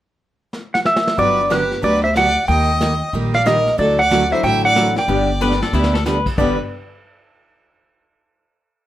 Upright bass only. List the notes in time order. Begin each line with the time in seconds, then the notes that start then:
1.18 G1
1.83 D2
2.48 D#2
3.13 A#1
3.79 D2
4.43 A1
5.08 G1
5.73 D2
6.38 G1